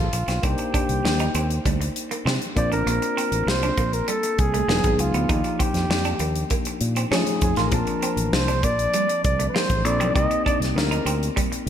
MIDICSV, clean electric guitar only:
0, 0, Header, 1, 3, 480
1, 0, Start_track
1, 0, Key_signature, -2, "major"
1, 0, Tempo, 607287
1, 344, Time_signature, 4, 2, 24, 8
1, 9241, End_track
2, 0, Start_track
2, 0, Title_t, "Clean electric guitar"
2, 0, Program_c, 0, 27
2, 224, Note_on_c, 0, 60, 57
2, 320, Note_off_c, 0, 60, 0
2, 343, Note_on_c, 0, 60, 67
2, 440, Note_off_c, 0, 60, 0
2, 585, Note_on_c, 0, 62, 70
2, 681, Note_off_c, 0, 62, 0
2, 950, Note_on_c, 0, 63, 64
2, 1044, Note_off_c, 0, 63, 0
2, 1069, Note_on_c, 0, 60, 68
2, 1163, Note_off_c, 0, 60, 0
2, 1309, Note_on_c, 0, 55, 76
2, 1404, Note_off_c, 0, 55, 0
2, 1668, Note_on_c, 0, 58, 69
2, 1763, Note_off_c, 0, 58, 0
2, 1788, Note_on_c, 0, 60, 78
2, 1883, Note_off_c, 0, 60, 0
2, 2147, Note_on_c, 0, 62, 59
2, 2243, Note_off_c, 0, 62, 0
2, 2268, Note_on_c, 0, 58, 68
2, 2363, Note_off_c, 0, 58, 0
2, 2508, Note_on_c, 0, 60, 71
2, 2604, Note_off_c, 0, 60, 0
2, 2869, Note_on_c, 0, 62, 61
2, 2964, Note_off_c, 0, 62, 0
2, 2986, Note_on_c, 0, 58, 68
2, 3082, Note_off_c, 0, 58, 0
2, 3225, Note_on_c, 0, 55, 69
2, 3321, Note_off_c, 0, 55, 0
2, 3587, Note_on_c, 0, 57, 68
2, 3683, Note_off_c, 0, 57, 0
2, 3703, Note_on_c, 0, 58, 74
2, 3800, Note_off_c, 0, 58, 0
2, 4066, Note_on_c, 0, 59, 60
2, 4162, Note_off_c, 0, 59, 0
2, 4183, Note_on_c, 0, 63, 67
2, 4280, Note_off_c, 0, 63, 0
2, 4422, Note_on_c, 0, 60, 67
2, 4520, Note_off_c, 0, 60, 0
2, 4783, Note_on_c, 0, 62, 62
2, 4880, Note_off_c, 0, 62, 0
2, 4902, Note_on_c, 0, 58, 65
2, 5000, Note_off_c, 0, 58, 0
2, 5143, Note_on_c, 0, 58, 67
2, 5240, Note_off_c, 0, 58, 0
2, 5507, Note_on_c, 0, 60, 64
2, 5603, Note_off_c, 0, 60, 0
2, 5625, Note_on_c, 0, 61, 77
2, 5721, Note_off_c, 0, 61, 0
2, 5985, Note_on_c, 0, 65, 59
2, 6081, Note_off_c, 0, 65, 0
2, 6107, Note_on_c, 0, 58, 65
2, 6203, Note_off_c, 0, 58, 0
2, 6345, Note_on_c, 0, 60, 72
2, 6441, Note_off_c, 0, 60, 0
2, 6704, Note_on_c, 0, 62, 60
2, 6801, Note_off_c, 0, 62, 0
2, 6827, Note_on_c, 0, 58, 64
2, 6922, Note_off_c, 0, 58, 0
2, 7066, Note_on_c, 0, 55, 73
2, 7162, Note_off_c, 0, 55, 0
2, 7425, Note_on_c, 0, 57, 61
2, 7521, Note_off_c, 0, 57, 0
2, 7545, Note_on_c, 0, 58, 78
2, 7641, Note_off_c, 0, 58, 0
2, 7909, Note_on_c, 0, 60, 60
2, 8003, Note_off_c, 0, 60, 0
2, 8027, Note_on_c, 0, 60, 68
2, 8122, Note_off_c, 0, 60, 0
2, 8268, Note_on_c, 0, 62, 75
2, 8363, Note_off_c, 0, 62, 0
2, 8625, Note_on_c, 0, 63, 64
2, 8721, Note_off_c, 0, 63, 0
2, 8744, Note_on_c, 0, 60, 67
2, 8840, Note_off_c, 0, 60, 0
2, 8981, Note_on_c, 0, 55, 71
2, 9078, Note_off_c, 0, 55, 0
2, 9241, End_track
3, 0, Start_track
3, 0, Title_t, "Muted clean electric guitar strokes"
3, 106, Note_on_c, 9, 29, 40
3, 185, Note_off_c, 9, 29, 0
3, 467, Note_on_c, 9, 29, 37
3, 546, Note_off_c, 9, 29, 0
3, 828, Note_on_c, 9, 29, 41
3, 907, Note_off_c, 9, 29, 0
3, 1427, Note_on_c, 9, 29, 39
3, 1506, Note_off_c, 9, 29, 0
3, 2028, Note_on_c, 9, 29, 38
3, 2107, Note_off_c, 9, 29, 0
3, 2390, Note_on_c, 9, 29, 37
3, 2469, Note_off_c, 9, 29, 0
3, 2746, Note_on_c, 9, 29, 39
3, 2825, Note_off_c, 9, 29, 0
3, 3348, Note_on_c, 9, 29, 38
3, 3427, Note_off_c, 9, 29, 0
3, 3946, Note_on_c, 9, 29, 39
3, 4025, Note_off_c, 9, 29, 0
3, 4303, Note_on_c, 9, 29, 38
3, 4382, Note_off_c, 9, 29, 0
3, 4665, Note_on_c, 9, 29, 37
3, 4744, Note_off_c, 9, 29, 0
3, 5270, Note_on_c, 9, 29, 37
3, 5350, Note_off_c, 9, 29, 0
3, 5865, Note_on_c, 9, 29, 39
3, 5944, Note_off_c, 9, 29, 0
3, 6224, Note_on_c, 9, 29, 39
3, 6303, Note_off_c, 9, 29, 0
3, 6587, Note_on_c, 9, 29, 38
3, 6666, Note_off_c, 9, 29, 0
3, 7185, Note_on_c, 9, 29, 39
3, 7264, Note_off_c, 9, 29, 0
3, 7788, Note_on_c, 9, 29, 41
3, 7867, Note_off_c, 9, 29, 0
3, 8147, Note_on_c, 9, 29, 41
3, 8226, Note_off_c, 9, 29, 0
3, 8508, Note_on_c, 9, 29, 39
3, 8587, Note_off_c, 9, 29, 0
3, 9104, Note_on_c, 9, 29, 38
3, 9184, Note_off_c, 9, 29, 0
3, 9241, End_track
0, 0, End_of_file